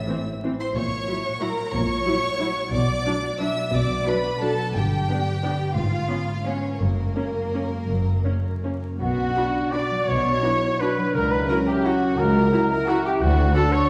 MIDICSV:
0, 0, Header, 1, 10, 480
1, 0, Start_track
1, 0, Key_signature, 2, "minor"
1, 0, Tempo, 329308
1, 1098, Time_signature, 3, 2, 24, 8
1, 4449, Tempo, 336889
1, 8769, Tempo, 362538
1, 15009, Tempo, 344828
1, 19321, End_track
2, 0, Start_track
2, 0, Title_t, "Violin section"
2, 0, Program_c, 0, 48
2, 0, Note_on_c, 0, 88, 69
2, 378, Note_off_c, 0, 88, 0
2, 880, Note_on_c, 0, 84, 73
2, 969, Note_off_c, 0, 84, 0
2, 1108, Note_on_c, 0, 85, 82
2, 2036, Note_off_c, 0, 85, 0
2, 2054, Note_on_c, 0, 82, 78
2, 2519, Note_off_c, 0, 82, 0
2, 2521, Note_on_c, 0, 85, 91
2, 3965, Note_off_c, 0, 85, 0
2, 3974, Note_on_c, 0, 86, 84
2, 4925, Note_off_c, 0, 86, 0
2, 4948, Note_on_c, 0, 88, 81
2, 5404, Note_off_c, 0, 88, 0
2, 5418, Note_on_c, 0, 86, 79
2, 5892, Note_off_c, 0, 86, 0
2, 5898, Note_on_c, 0, 83, 78
2, 6393, Note_off_c, 0, 83, 0
2, 6395, Note_on_c, 0, 81, 90
2, 6870, Note_off_c, 0, 81, 0
2, 6871, Note_on_c, 0, 79, 78
2, 8298, Note_on_c, 0, 77, 76
2, 8300, Note_off_c, 0, 79, 0
2, 9229, Note_off_c, 0, 77, 0
2, 9258, Note_on_c, 0, 73, 65
2, 9724, Note_on_c, 0, 70, 65
2, 9725, Note_off_c, 0, 73, 0
2, 12393, Note_off_c, 0, 70, 0
2, 13108, Note_on_c, 0, 83, 46
2, 13214, Note_off_c, 0, 83, 0
2, 13592, Note_on_c, 0, 83, 45
2, 13698, Note_off_c, 0, 83, 0
2, 14526, Note_on_c, 0, 83, 46
2, 14632, Note_off_c, 0, 83, 0
2, 15029, Note_on_c, 0, 83, 48
2, 15141, Note_off_c, 0, 83, 0
2, 15972, Note_on_c, 0, 82, 51
2, 16084, Note_off_c, 0, 82, 0
2, 16482, Note_on_c, 0, 82, 51
2, 16594, Note_off_c, 0, 82, 0
2, 17423, Note_on_c, 0, 82, 52
2, 17535, Note_off_c, 0, 82, 0
2, 17920, Note_on_c, 0, 82, 58
2, 18031, Note_off_c, 0, 82, 0
2, 18844, Note_on_c, 0, 83, 54
2, 18955, Note_off_c, 0, 83, 0
2, 19321, End_track
3, 0, Start_track
3, 0, Title_t, "Flute section"
3, 0, Program_c, 1, 73
3, 12625, Note_on_c, 1, 78, 62
3, 13537, Note_off_c, 1, 78, 0
3, 13591, Note_on_c, 1, 86, 65
3, 14046, Note_off_c, 1, 86, 0
3, 14068, Note_on_c, 1, 85, 70
3, 15015, Note_on_c, 1, 83, 64
3, 15017, Note_off_c, 1, 85, 0
3, 15484, Note_on_c, 1, 82, 66
3, 15487, Note_off_c, 1, 83, 0
3, 15712, Note_off_c, 1, 82, 0
3, 15722, Note_on_c, 1, 83, 65
3, 15968, Note_off_c, 1, 83, 0
3, 15979, Note_on_c, 1, 82, 67
3, 16221, Note_off_c, 1, 82, 0
3, 16223, Note_on_c, 1, 79, 66
3, 16470, Note_off_c, 1, 79, 0
3, 16478, Note_on_c, 1, 78, 63
3, 16942, Note_off_c, 1, 78, 0
3, 16952, Note_on_c, 1, 82, 75
3, 17642, Note_off_c, 1, 82, 0
3, 17659, Note_on_c, 1, 82, 78
3, 17900, Note_on_c, 1, 78, 70
3, 17903, Note_off_c, 1, 82, 0
3, 18144, Note_off_c, 1, 78, 0
3, 18144, Note_on_c, 1, 79, 68
3, 18367, Note_off_c, 1, 79, 0
3, 18373, Note_on_c, 1, 78, 74
3, 18829, Note_on_c, 1, 81, 82
3, 18835, Note_off_c, 1, 78, 0
3, 19080, Note_off_c, 1, 81, 0
3, 19082, Note_on_c, 1, 85, 80
3, 19321, Note_off_c, 1, 85, 0
3, 19321, End_track
4, 0, Start_track
4, 0, Title_t, "Trumpet"
4, 0, Program_c, 2, 56
4, 12627, Note_on_c, 2, 66, 74
4, 13594, Note_on_c, 2, 74, 84
4, 13614, Note_off_c, 2, 66, 0
4, 14057, Note_on_c, 2, 73, 85
4, 14077, Note_off_c, 2, 74, 0
4, 15013, Note_on_c, 2, 71, 75
4, 15034, Note_off_c, 2, 73, 0
4, 15491, Note_on_c, 2, 70, 84
4, 15512, Note_off_c, 2, 71, 0
4, 15716, Note_on_c, 2, 71, 79
4, 15737, Note_off_c, 2, 70, 0
4, 15956, Note_off_c, 2, 71, 0
4, 15964, Note_on_c, 2, 70, 74
4, 16079, Note_off_c, 2, 70, 0
4, 16223, Note_on_c, 2, 67, 75
4, 16467, Note_on_c, 2, 66, 76
4, 16488, Note_off_c, 2, 67, 0
4, 16937, Note_on_c, 2, 70, 83
4, 16958, Note_off_c, 2, 66, 0
4, 17652, Note_off_c, 2, 70, 0
4, 17660, Note_on_c, 2, 70, 78
4, 17909, Note_on_c, 2, 66, 88
4, 17930, Note_off_c, 2, 70, 0
4, 18142, Note_off_c, 2, 66, 0
4, 18150, Note_on_c, 2, 67, 79
4, 18374, Note_on_c, 2, 66, 87
4, 18395, Note_off_c, 2, 67, 0
4, 18828, Note_off_c, 2, 66, 0
4, 18837, Note_on_c, 2, 69, 92
4, 19086, Note_on_c, 2, 73, 88
4, 19107, Note_off_c, 2, 69, 0
4, 19321, Note_off_c, 2, 73, 0
4, 19321, End_track
5, 0, Start_track
5, 0, Title_t, "Violin section"
5, 0, Program_c, 3, 48
5, 0, Note_on_c, 3, 76, 61
5, 348, Note_off_c, 3, 76, 0
5, 869, Note_on_c, 3, 72, 65
5, 1082, Note_off_c, 3, 72, 0
5, 1094, Note_on_c, 3, 73, 74
5, 2048, Note_off_c, 3, 73, 0
5, 2061, Note_on_c, 3, 70, 70
5, 2514, Note_off_c, 3, 70, 0
5, 2524, Note_on_c, 3, 73, 79
5, 3966, Note_off_c, 3, 73, 0
5, 3976, Note_on_c, 3, 74, 77
5, 4926, Note_off_c, 3, 74, 0
5, 4942, Note_on_c, 3, 76, 71
5, 5401, Note_off_c, 3, 76, 0
5, 5410, Note_on_c, 3, 74, 73
5, 5888, Note_off_c, 3, 74, 0
5, 5893, Note_on_c, 3, 71, 72
5, 6385, Note_on_c, 3, 69, 79
5, 6390, Note_off_c, 3, 71, 0
5, 6856, Note_off_c, 3, 69, 0
5, 6871, Note_on_c, 3, 67, 64
5, 8291, Note_on_c, 3, 65, 61
5, 8300, Note_off_c, 3, 67, 0
5, 9244, Note_off_c, 3, 65, 0
5, 9246, Note_on_c, 3, 61, 59
5, 9714, Note_on_c, 3, 58, 57
5, 9718, Note_off_c, 3, 61, 0
5, 12388, Note_off_c, 3, 58, 0
5, 12621, Note_on_c, 3, 66, 70
5, 13535, Note_off_c, 3, 66, 0
5, 13587, Note_on_c, 3, 74, 67
5, 14047, Note_on_c, 3, 73, 71
5, 14054, Note_off_c, 3, 74, 0
5, 15006, Note_off_c, 3, 73, 0
5, 15011, Note_on_c, 3, 71, 68
5, 15486, Note_off_c, 3, 71, 0
5, 15488, Note_on_c, 3, 70, 69
5, 15714, Note_off_c, 3, 70, 0
5, 15718, Note_on_c, 3, 71, 63
5, 15965, Note_off_c, 3, 71, 0
5, 15967, Note_on_c, 3, 70, 67
5, 16220, Note_off_c, 3, 70, 0
5, 16237, Note_on_c, 3, 67, 62
5, 16477, Note_off_c, 3, 67, 0
5, 16478, Note_on_c, 3, 66, 69
5, 16942, Note_off_c, 3, 66, 0
5, 16953, Note_on_c, 3, 70, 75
5, 17641, Note_off_c, 3, 70, 0
5, 17658, Note_on_c, 3, 70, 70
5, 17897, Note_on_c, 3, 66, 73
5, 17903, Note_off_c, 3, 70, 0
5, 18131, Note_on_c, 3, 67, 66
5, 18143, Note_off_c, 3, 66, 0
5, 18225, Note_off_c, 3, 67, 0
5, 18382, Note_on_c, 3, 66, 71
5, 18831, Note_off_c, 3, 66, 0
5, 18854, Note_on_c, 3, 69, 73
5, 19092, Note_off_c, 3, 69, 0
5, 19092, Note_on_c, 3, 73, 80
5, 19321, Note_off_c, 3, 73, 0
5, 19321, End_track
6, 0, Start_track
6, 0, Title_t, "Harp"
6, 0, Program_c, 4, 46
6, 0, Note_on_c, 4, 45, 49
6, 0, Note_on_c, 4, 52, 41
6, 0, Note_on_c, 4, 64, 43
6, 127, Note_on_c, 4, 60, 40
6, 355, Note_off_c, 4, 64, 0
6, 373, Note_on_c, 4, 64, 45
6, 623, Note_on_c, 4, 72, 42
6, 848, Note_off_c, 4, 64, 0
6, 866, Note_on_c, 4, 64, 46
6, 1098, Note_on_c, 4, 46, 53
6, 1113, Note_off_c, 4, 45, 0
6, 1113, Note_off_c, 4, 52, 0
6, 1113, Note_off_c, 4, 60, 0
6, 1113, Note_off_c, 4, 72, 0
6, 1327, Note_on_c, 4, 58, 43
6, 1548, Note_off_c, 4, 64, 0
6, 1565, Note_on_c, 4, 64, 46
6, 1811, Note_on_c, 4, 66, 43
6, 2049, Note_on_c, 4, 73, 45
6, 2273, Note_off_c, 4, 66, 0
6, 2291, Note_on_c, 4, 66, 45
6, 2502, Note_off_c, 4, 46, 0
6, 2520, Note_on_c, 4, 46, 50
6, 2737, Note_off_c, 4, 58, 0
6, 2754, Note_on_c, 4, 58, 45
6, 2977, Note_off_c, 4, 64, 0
6, 2994, Note_on_c, 4, 64, 48
6, 3225, Note_off_c, 4, 66, 0
6, 3242, Note_on_c, 4, 66, 47
6, 3472, Note_off_c, 4, 73, 0
6, 3490, Note_on_c, 4, 73, 50
6, 3717, Note_off_c, 4, 66, 0
6, 3735, Note_on_c, 4, 66, 50
6, 3968, Note_on_c, 4, 47, 55
6, 3981, Note_off_c, 4, 64, 0
6, 3982, Note_off_c, 4, 46, 0
6, 3983, Note_off_c, 4, 73, 0
6, 3984, Note_off_c, 4, 58, 0
6, 4209, Note_on_c, 4, 54, 44
6, 4448, Note_on_c, 4, 62, 46
6, 4680, Note_off_c, 4, 66, 0
6, 4697, Note_on_c, 4, 66, 47
6, 4940, Note_on_c, 4, 71, 49
6, 5160, Note_off_c, 4, 66, 0
6, 5177, Note_on_c, 4, 66, 46
6, 5391, Note_off_c, 4, 47, 0
6, 5408, Note_on_c, 4, 47, 58
6, 5628, Note_off_c, 4, 54, 0
6, 5645, Note_on_c, 4, 54, 46
6, 5875, Note_off_c, 4, 62, 0
6, 5892, Note_on_c, 4, 62, 46
6, 6124, Note_off_c, 4, 66, 0
6, 6141, Note_on_c, 4, 66, 52
6, 6368, Note_off_c, 4, 71, 0
6, 6385, Note_on_c, 4, 71, 52
6, 6619, Note_off_c, 4, 66, 0
6, 6636, Note_on_c, 4, 66, 47
6, 6866, Note_on_c, 4, 43, 57
6, 6885, Note_off_c, 4, 47, 0
6, 6886, Note_off_c, 4, 54, 0
6, 6887, Note_off_c, 4, 66, 0
6, 7099, Note_on_c, 4, 50, 46
6, 7324, Note_off_c, 4, 62, 0
6, 7341, Note_on_c, 4, 62, 43
6, 7592, Note_on_c, 4, 67, 48
6, 7816, Note_off_c, 4, 71, 0
6, 7833, Note_on_c, 4, 71, 47
6, 8047, Note_off_c, 4, 67, 0
6, 8064, Note_on_c, 4, 67, 44
6, 8291, Note_on_c, 4, 44, 51
6, 8310, Note_off_c, 4, 67, 0
6, 8314, Note_off_c, 4, 62, 0
6, 8315, Note_off_c, 4, 43, 0
6, 8315, Note_off_c, 4, 50, 0
6, 8511, Note_on_c, 4, 56, 40
6, 8765, Note_on_c, 4, 61, 42
6, 8979, Note_off_c, 4, 71, 0
6, 8995, Note_on_c, 4, 71, 42
6, 9239, Note_on_c, 4, 73, 41
6, 9465, Note_off_c, 4, 71, 0
6, 9481, Note_on_c, 4, 71, 40
6, 9713, Note_on_c, 4, 42, 47
6, 9731, Note_off_c, 4, 56, 0
6, 9734, Note_off_c, 4, 44, 0
6, 9735, Note_off_c, 4, 71, 0
6, 9947, Note_on_c, 4, 49, 38
6, 10171, Note_off_c, 4, 61, 0
6, 10187, Note_on_c, 4, 61, 38
6, 10438, Note_on_c, 4, 70, 39
6, 10674, Note_off_c, 4, 73, 0
6, 10690, Note_on_c, 4, 73, 37
6, 10915, Note_off_c, 4, 70, 0
6, 10931, Note_on_c, 4, 70, 36
6, 11145, Note_off_c, 4, 42, 0
6, 11161, Note_on_c, 4, 42, 44
6, 11376, Note_off_c, 4, 49, 0
6, 11392, Note_on_c, 4, 49, 34
6, 11622, Note_off_c, 4, 61, 0
6, 11638, Note_on_c, 4, 61, 39
6, 11873, Note_off_c, 4, 70, 0
6, 11889, Note_on_c, 4, 70, 39
6, 12129, Note_off_c, 4, 73, 0
6, 12145, Note_on_c, 4, 73, 37
6, 12376, Note_off_c, 4, 70, 0
6, 12392, Note_on_c, 4, 70, 38
6, 12626, Note_on_c, 4, 47, 52
6, 12641, Note_off_c, 4, 42, 0
6, 12641, Note_off_c, 4, 49, 0
6, 12642, Note_off_c, 4, 61, 0
6, 12644, Note_off_c, 4, 70, 0
6, 12644, Note_off_c, 4, 73, 0
6, 12856, Note_on_c, 4, 62, 42
6, 13347, Note_on_c, 4, 74, 46
6, 13592, Note_on_c, 4, 66, 43
6, 13828, Note_on_c, 4, 54, 39
6, 14042, Note_off_c, 4, 47, 0
6, 14058, Note_on_c, 4, 47, 50
6, 14272, Note_off_c, 4, 62, 0
6, 14288, Note_on_c, 4, 62, 45
6, 14517, Note_off_c, 4, 66, 0
6, 14533, Note_on_c, 4, 66, 42
6, 14758, Note_off_c, 4, 74, 0
6, 14998, Note_off_c, 4, 66, 0
6, 15014, Note_on_c, 4, 66, 46
6, 15243, Note_off_c, 4, 54, 0
6, 15260, Note_on_c, 4, 54, 46
6, 15487, Note_on_c, 4, 49, 55
6, 15505, Note_off_c, 4, 47, 0
6, 15505, Note_off_c, 4, 62, 0
6, 15720, Note_on_c, 4, 64, 45
6, 15956, Note_off_c, 4, 66, 0
6, 15972, Note_on_c, 4, 66, 51
6, 16228, Note_on_c, 4, 76, 55
6, 16456, Note_off_c, 4, 66, 0
6, 16473, Note_on_c, 4, 66, 50
6, 16714, Note_on_c, 4, 61, 45
6, 16923, Note_off_c, 4, 49, 0
6, 16939, Note_on_c, 4, 49, 55
6, 17148, Note_off_c, 4, 64, 0
6, 17165, Note_on_c, 4, 64, 52
6, 17393, Note_off_c, 4, 66, 0
6, 17410, Note_on_c, 4, 66, 53
6, 17647, Note_off_c, 4, 76, 0
6, 17664, Note_on_c, 4, 76, 55
6, 17897, Note_off_c, 4, 66, 0
6, 17913, Note_on_c, 4, 66, 53
6, 18138, Note_off_c, 4, 61, 0
6, 18155, Note_on_c, 4, 61, 53
6, 18381, Note_on_c, 4, 50, 65
6, 18391, Note_off_c, 4, 64, 0
6, 18392, Note_off_c, 4, 49, 0
6, 18393, Note_off_c, 4, 76, 0
6, 18394, Note_off_c, 4, 61, 0
6, 18606, Note_on_c, 4, 62, 53
6, 18828, Note_off_c, 4, 66, 0
6, 18844, Note_on_c, 4, 66, 57
6, 19088, Note_on_c, 4, 74, 61
6, 19321, Note_off_c, 4, 50, 0
6, 19321, Note_off_c, 4, 54, 0
6, 19321, Note_off_c, 4, 62, 0
6, 19321, Note_off_c, 4, 66, 0
6, 19321, Note_off_c, 4, 74, 0
6, 19321, End_track
7, 0, Start_track
7, 0, Title_t, "Viola section"
7, 0, Program_c, 5, 48
7, 128, Note_on_c, 5, 52, 42
7, 129, Note_on_c, 5, 60, 43
7, 245, Note_off_c, 5, 52, 0
7, 245, Note_off_c, 5, 60, 0
7, 634, Note_on_c, 5, 52, 44
7, 634, Note_on_c, 5, 60, 48
7, 751, Note_off_c, 5, 52, 0
7, 751, Note_off_c, 5, 60, 0
7, 1561, Note_on_c, 5, 64, 43
7, 1565, Note_on_c, 5, 54, 47
7, 1677, Note_off_c, 5, 64, 0
7, 1681, Note_off_c, 5, 54, 0
7, 2057, Note_on_c, 5, 54, 49
7, 2058, Note_on_c, 5, 64, 50
7, 2174, Note_off_c, 5, 54, 0
7, 2174, Note_off_c, 5, 64, 0
7, 2999, Note_on_c, 5, 54, 48
7, 3001, Note_on_c, 5, 64, 49
7, 3116, Note_off_c, 5, 54, 0
7, 3118, Note_off_c, 5, 64, 0
7, 3495, Note_on_c, 5, 54, 50
7, 3500, Note_on_c, 5, 64, 48
7, 3612, Note_off_c, 5, 54, 0
7, 3617, Note_off_c, 5, 64, 0
7, 4456, Note_on_c, 5, 54, 49
7, 4459, Note_on_c, 5, 62, 52
7, 4570, Note_off_c, 5, 54, 0
7, 4573, Note_off_c, 5, 62, 0
7, 4945, Note_on_c, 5, 54, 47
7, 4947, Note_on_c, 5, 62, 51
7, 5059, Note_off_c, 5, 54, 0
7, 5061, Note_off_c, 5, 62, 0
7, 5883, Note_on_c, 5, 54, 48
7, 5884, Note_on_c, 5, 62, 46
7, 5997, Note_off_c, 5, 54, 0
7, 5998, Note_off_c, 5, 62, 0
7, 6386, Note_on_c, 5, 62, 50
7, 6387, Note_on_c, 5, 54, 50
7, 6500, Note_off_c, 5, 62, 0
7, 6501, Note_off_c, 5, 54, 0
7, 7350, Note_on_c, 5, 59, 45
7, 7350, Note_on_c, 5, 62, 46
7, 7463, Note_off_c, 5, 62, 0
7, 7464, Note_off_c, 5, 59, 0
7, 7845, Note_on_c, 5, 59, 46
7, 7845, Note_on_c, 5, 62, 49
7, 7959, Note_off_c, 5, 59, 0
7, 7959, Note_off_c, 5, 62, 0
7, 8772, Note_on_c, 5, 59, 44
7, 8775, Note_on_c, 5, 61, 43
7, 8877, Note_off_c, 5, 59, 0
7, 8881, Note_off_c, 5, 61, 0
7, 9254, Note_on_c, 5, 59, 44
7, 9255, Note_on_c, 5, 61, 43
7, 9360, Note_off_c, 5, 59, 0
7, 9361, Note_off_c, 5, 61, 0
7, 10193, Note_on_c, 5, 58, 41
7, 10195, Note_on_c, 5, 61, 41
7, 10299, Note_off_c, 5, 58, 0
7, 10301, Note_off_c, 5, 61, 0
7, 10701, Note_on_c, 5, 58, 39
7, 10702, Note_on_c, 5, 61, 43
7, 10807, Note_off_c, 5, 58, 0
7, 10808, Note_off_c, 5, 61, 0
7, 11640, Note_on_c, 5, 58, 41
7, 11643, Note_on_c, 5, 61, 40
7, 11746, Note_off_c, 5, 58, 0
7, 11749, Note_off_c, 5, 61, 0
7, 12150, Note_on_c, 5, 58, 39
7, 12151, Note_on_c, 5, 61, 38
7, 12256, Note_off_c, 5, 58, 0
7, 12257, Note_off_c, 5, 61, 0
7, 13100, Note_on_c, 5, 62, 43
7, 13102, Note_on_c, 5, 66, 45
7, 13206, Note_off_c, 5, 62, 0
7, 13208, Note_off_c, 5, 66, 0
7, 13599, Note_on_c, 5, 66, 48
7, 13600, Note_on_c, 5, 62, 48
7, 13705, Note_off_c, 5, 66, 0
7, 13706, Note_off_c, 5, 62, 0
7, 14521, Note_on_c, 5, 62, 45
7, 14524, Note_on_c, 5, 66, 45
7, 14627, Note_off_c, 5, 62, 0
7, 14629, Note_off_c, 5, 66, 0
7, 15016, Note_on_c, 5, 66, 45
7, 15019, Note_on_c, 5, 62, 48
7, 15127, Note_off_c, 5, 66, 0
7, 15130, Note_off_c, 5, 62, 0
7, 15975, Note_on_c, 5, 64, 48
7, 15977, Note_on_c, 5, 66, 49
7, 16087, Note_off_c, 5, 64, 0
7, 16089, Note_off_c, 5, 66, 0
7, 16472, Note_on_c, 5, 64, 49
7, 16475, Note_on_c, 5, 66, 49
7, 16583, Note_off_c, 5, 64, 0
7, 16586, Note_off_c, 5, 66, 0
7, 17408, Note_on_c, 5, 66, 53
7, 17412, Note_on_c, 5, 64, 55
7, 17519, Note_off_c, 5, 66, 0
7, 17523, Note_off_c, 5, 64, 0
7, 17915, Note_on_c, 5, 64, 57
7, 17915, Note_on_c, 5, 66, 56
7, 18026, Note_off_c, 5, 64, 0
7, 18026, Note_off_c, 5, 66, 0
7, 18842, Note_on_c, 5, 66, 55
7, 18843, Note_on_c, 5, 62, 55
7, 18954, Note_off_c, 5, 62, 0
7, 18954, Note_off_c, 5, 66, 0
7, 19321, End_track
8, 0, Start_track
8, 0, Title_t, "French horn section"
8, 0, Program_c, 6, 60
8, 129, Note_on_c, 6, 60, 44
8, 134, Note_on_c, 6, 52, 44
8, 308, Note_off_c, 6, 60, 0
8, 312, Note_off_c, 6, 52, 0
8, 629, Note_on_c, 6, 60, 45
8, 630, Note_on_c, 6, 52, 46
8, 799, Note_off_c, 6, 60, 0
8, 800, Note_off_c, 6, 52, 0
8, 1557, Note_on_c, 6, 64, 45
8, 1564, Note_on_c, 6, 54, 46
8, 1733, Note_off_c, 6, 64, 0
8, 1739, Note_off_c, 6, 54, 0
8, 2043, Note_on_c, 6, 64, 46
8, 2045, Note_on_c, 6, 54, 49
8, 2214, Note_off_c, 6, 64, 0
8, 2215, Note_off_c, 6, 54, 0
8, 2996, Note_on_c, 6, 54, 49
8, 3001, Note_on_c, 6, 64, 51
8, 3173, Note_off_c, 6, 54, 0
8, 3177, Note_off_c, 6, 64, 0
8, 3487, Note_on_c, 6, 54, 51
8, 3489, Note_on_c, 6, 64, 53
8, 3659, Note_off_c, 6, 54, 0
8, 3661, Note_off_c, 6, 64, 0
8, 4450, Note_on_c, 6, 62, 48
8, 4453, Note_on_c, 6, 54, 47
8, 4627, Note_off_c, 6, 62, 0
8, 4630, Note_off_c, 6, 54, 0
8, 4937, Note_on_c, 6, 54, 51
8, 4939, Note_on_c, 6, 62, 52
8, 5107, Note_off_c, 6, 54, 0
8, 5109, Note_off_c, 6, 62, 0
8, 5887, Note_on_c, 6, 54, 48
8, 5890, Note_on_c, 6, 62, 48
8, 6068, Note_off_c, 6, 54, 0
8, 6069, Note_off_c, 6, 62, 0
8, 6384, Note_on_c, 6, 54, 49
8, 6385, Note_on_c, 6, 62, 49
8, 6558, Note_off_c, 6, 54, 0
8, 6560, Note_off_c, 6, 62, 0
8, 7338, Note_on_c, 6, 59, 43
8, 7343, Note_on_c, 6, 62, 46
8, 7519, Note_off_c, 6, 59, 0
8, 7523, Note_off_c, 6, 62, 0
8, 7840, Note_on_c, 6, 62, 49
8, 7843, Note_on_c, 6, 59, 49
8, 8006, Note_off_c, 6, 62, 0
8, 8009, Note_off_c, 6, 59, 0
8, 8768, Note_on_c, 6, 61, 40
8, 8769, Note_on_c, 6, 59, 41
8, 8940, Note_off_c, 6, 61, 0
8, 8941, Note_off_c, 6, 59, 0
8, 9251, Note_on_c, 6, 61, 42
8, 9257, Note_on_c, 6, 59, 45
8, 9421, Note_off_c, 6, 61, 0
8, 9425, Note_off_c, 6, 59, 0
8, 10206, Note_on_c, 6, 58, 40
8, 10209, Note_on_c, 6, 61, 39
8, 10383, Note_off_c, 6, 58, 0
8, 10386, Note_off_c, 6, 61, 0
8, 10697, Note_on_c, 6, 61, 38
8, 10699, Note_on_c, 6, 58, 40
8, 10868, Note_off_c, 6, 61, 0
8, 10869, Note_off_c, 6, 58, 0
8, 11652, Note_on_c, 6, 58, 35
8, 11656, Note_on_c, 6, 61, 37
8, 11831, Note_off_c, 6, 58, 0
8, 11834, Note_off_c, 6, 61, 0
8, 12152, Note_on_c, 6, 58, 40
8, 12156, Note_on_c, 6, 61, 37
8, 12325, Note_off_c, 6, 58, 0
8, 12328, Note_off_c, 6, 61, 0
8, 13099, Note_on_c, 6, 62, 56
8, 13556, Note_off_c, 6, 62, 0
8, 13595, Note_on_c, 6, 66, 68
8, 14525, Note_on_c, 6, 64, 55
8, 14528, Note_off_c, 6, 66, 0
8, 15010, Note_off_c, 6, 64, 0
8, 15021, Note_on_c, 6, 62, 61
8, 15964, Note_on_c, 6, 61, 59
8, 15971, Note_off_c, 6, 62, 0
8, 16936, Note_off_c, 6, 61, 0
8, 16937, Note_on_c, 6, 66, 78
8, 17399, Note_off_c, 6, 66, 0
8, 17405, Note_on_c, 6, 64, 76
8, 18806, Note_off_c, 6, 64, 0
8, 18827, Note_on_c, 6, 62, 73
8, 19321, Note_off_c, 6, 62, 0
8, 19321, End_track
9, 0, Start_track
9, 0, Title_t, "Cello section"
9, 0, Program_c, 7, 48
9, 1098, Note_on_c, 7, 46, 65
9, 1465, Note_off_c, 7, 46, 0
9, 2523, Note_on_c, 7, 46, 67
9, 2894, Note_off_c, 7, 46, 0
9, 3964, Note_on_c, 7, 47, 68
9, 4344, Note_off_c, 7, 47, 0
9, 5411, Note_on_c, 7, 47, 71
9, 5785, Note_off_c, 7, 47, 0
9, 6860, Note_on_c, 7, 43, 69
9, 7237, Note_off_c, 7, 43, 0
9, 8299, Note_on_c, 7, 44, 63
9, 8667, Note_off_c, 7, 44, 0
9, 9724, Note_on_c, 7, 42, 58
9, 10096, Note_off_c, 7, 42, 0
9, 11166, Note_on_c, 7, 42, 54
9, 11538, Note_off_c, 7, 42, 0
9, 12630, Note_on_c, 7, 47, 54
9, 13019, Note_off_c, 7, 47, 0
9, 14060, Note_on_c, 7, 47, 61
9, 14446, Note_off_c, 7, 47, 0
9, 15486, Note_on_c, 7, 37, 61
9, 15881, Note_off_c, 7, 37, 0
9, 16939, Note_on_c, 7, 37, 70
9, 17326, Note_off_c, 7, 37, 0
9, 18374, Note_on_c, 7, 38, 72
9, 18755, Note_off_c, 7, 38, 0
9, 19321, End_track
10, 0, Start_track
10, 0, Title_t, "Double bass section"
10, 0, Program_c, 8, 48
10, 1092, Note_on_c, 8, 34, 64
10, 1462, Note_off_c, 8, 34, 0
10, 2515, Note_on_c, 8, 34, 67
10, 2890, Note_off_c, 8, 34, 0
10, 3965, Note_on_c, 8, 35, 73
10, 4344, Note_off_c, 8, 35, 0
10, 5408, Note_on_c, 8, 35, 75
10, 5783, Note_off_c, 8, 35, 0
10, 6861, Note_on_c, 8, 31, 71
10, 7238, Note_off_c, 8, 31, 0
10, 8285, Note_on_c, 8, 32, 60
10, 8659, Note_off_c, 8, 32, 0
10, 9711, Note_on_c, 8, 30, 62
10, 10089, Note_off_c, 8, 30, 0
10, 11154, Note_on_c, 8, 30, 55
10, 11531, Note_off_c, 8, 30, 0
10, 12622, Note_on_c, 8, 35, 61
10, 13014, Note_off_c, 8, 35, 0
10, 14056, Note_on_c, 8, 35, 63
10, 14444, Note_off_c, 8, 35, 0
10, 15490, Note_on_c, 8, 37, 64
10, 15883, Note_off_c, 8, 37, 0
10, 16933, Note_on_c, 8, 37, 69
10, 17323, Note_off_c, 8, 37, 0
10, 18370, Note_on_c, 8, 38, 72
10, 18753, Note_off_c, 8, 38, 0
10, 19321, End_track
0, 0, End_of_file